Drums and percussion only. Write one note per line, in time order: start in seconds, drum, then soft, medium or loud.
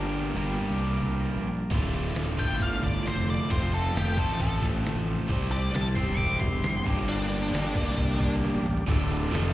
1.71 kick loud
1.71 open hi-hat medium
1.94 open hi-hat soft
2.15 snare medium
2.15 open hi-hat medium
2.38 kick medium
2.38 open hi-hat soft
2.60 kick medium
2.60 open hi-hat medium
2.83 kick medium
2.83 open hi-hat soft
3.06 snare medium
3.06 open hi-hat medium
3.28 open hi-hat medium
3.50 kick loud
3.50 open hi-hat medium
3.73 open hi-hat medium
3.95 snare loud
3.95 open hi-hat medium
4.17 kick medium
4.17 open hi-hat soft
4.40 kick medium
4.40 open hi-hat medium
4.62 kick medium
4.62 open hi-hat soft
4.85 snare medium
4.85 open hi-hat medium
5.08 open hi-hat soft
5.29 kick loud
5.29 open hi-hat medium
5.52 open hi-hat soft
5.74 snare loud
5.74 open hi-hat medium
5.96 kick medium
5.96 open hi-hat soft
6.18 kick medium
6.18 open hi-hat medium
6.41 kick medium
6.41 open hi-hat soft
6.62 snare loud
6.62 open hi-hat medium
6.85 kick loud
6.85 open hi-hat soft
7.08 open hi-hat medium
7.31 open hi-hat soft
7.53 snare loud
7.53 open hi-hat medium
7.75 kick medium
7.75 open hi-hat soft
7.98 kick medium
7.98 open hi-hat medium
8.20 kick medium
8.20 open hi-hat soft
8.43 snare soft
8.43 open hi-hat medium
8.55 high tom medium
8.66 mid tom medium
8.66 open hi-hat medium
8.77 floor tom medium
8.88 kick loud
8.88 open hi-hat medium
8.88 crash loud
9.11 open hi-hat medium
9.24 snare soft
9.33 snare loud
9.33 open hi-hat medium